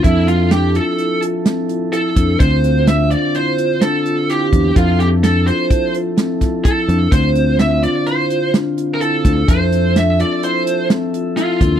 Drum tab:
HH |xxxxxxxxxx|xxxxxxxxxx|xxxxxxxxxx|xxxxxxxxxx|
SD |--o---o---|--o---o---|--o---oo--|--o---o--o|
BD |o--------o|o--------o|o---o--oo-|o--------o|

HH |xxxxxxxxxx|
SD |--o---o---|
BD |o--------o|